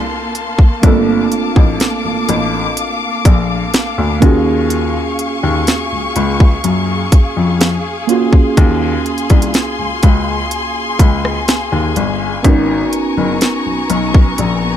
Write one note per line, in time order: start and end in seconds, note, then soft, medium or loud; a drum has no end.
0.00 0.78 A#3 medium
0.00 4.18 A#3 medium
0.00 0.79 C4 medium
0.00 0.80 D4 medium
0.00 0.80 F4 medium
0.00 0.81 A4 medium
0.00 12.40 F5 medium
0.00 4.18 A5 medium
0.00 0.79 C6 medium
0.00 downlifter medium
0.35 closed hi-hat medium
0.59 kick medium
0.81 1.20 G1 loud
0.81 0.89 A3 medium
0.81 4.18 C4 medium
0.81 4.18 D4 medium
0.81 4.19 D6 medium
0.81 kick loud
0.81 closed hi-hat medium
0.86 4.19 A#3 medium
0.86 4.19 F4 medium
0.86 4.20 A4 medium
1.32 closed hi-hat medium
1.56 1.74 A1 loud
1.56 kick loud
1.80 snare loud
1.80 closed hi-hat medium
2.05 2.14 A1 soft
2.29 2.66 A1 loud
2.29 closed hi-hat medium
2.77 closed hi-hat medium
3.25 3.62 A#1 loud
3.25 kick loud
3.25 closed hi-hat medium
3.74 snare loud
3.74 closed hi-hat medium
3.98 4.16 D2 medium
4.20 4.96 D#2 medium
4.20 8.04 A#3 medium
4.20 8.05 C#4 medium
4.20 8.05 F4 medium
4.20 12.41 G#4 medium
4.20 14.77 G#5 medium
4.20 8.05 C#6 medium
4.20 kick loud
4.20 closed hi-hat medium
4.24 8.06 F#4 medium
4.24 8.07 G#4 medium
4.70 closed hi-hat medium
5.19 closed hi-hat medium
5.43 5.61 D#2 medium
5.67 snare loud
5.67 closed hi-hat medium
5.92 6.01 C#2 soft
6.16 6.52 C#2 medium
6.16 closed hi-hat medium
6.40 kick loud
6.64 7.01 F#2 medium
6.64 closed hi-hat medium
7.12 kick loud
7.12 closed hi-hat medium
7.37 7.73 F2 medium
7.61 snare loud
7.61 closed hi-hat medium
8.07 11.91 A#3 medium
8.07 11.92 C#4 medium
8.07 11.92 F4 medium
8.07 12.40 C6 loud
8.07 closed hi-hat medium
8.11 11.93 F#4 medium
8.11 11.94 G#4 medium
8.33 kick loud
8.57 8.94 D#2 loud
8.57 kick loud
8.57 closed hi-hat medium
9.06 closed hi-hat soft
9.18 closed hi-hat soft
9.30 9.48 C2 medium
9.30 kick loud
9.30 closed hi-hat medium
9.42 closed hi-hat medium
9.54 snare loud
9.54 closed hi-hat medium
9.79 9.88 C#2 soft
10.03 10.40 C#2 medium
10.03 kick loud
10.03 closed hi-hat medium
10.51 closed hi-hat medium
10.99 11.36 C#2 medium
10.99 kick loud
10.99 closed hi-hat medium
11.25 cross-stick medium
11.48 snare loud
11.48 closed hi-hat medium
11.72 11.90 D#2 medium
11.96 12.33 G1 medium
11.96 closed hi-hat medium
12.43 12.81 G#1 loud
12.43 14.77 B3 medium
12.43 14.77 C#4 medium
12.43 14.77 D#4 medium
12.43 14.77 A#5 medium
12.43 14.77 C#6 medium
12.43 kick loud
12.43 closed hi-hat medium
12.47 14.77 F#4 medium
12.47 14.77 A#4 medium
12.93 closed hi-hat medium
13.17 13.36 F#1 loud
13.41 snare loud
13.41 closed hi-hat medium
13.66 13.75 B1 soft
13.90 14.27 B1 medium
13.90 closed hi-hat medium
14.14 kick loud
14.38 14.75 A#1 medium
14.38 closed hi-hat medium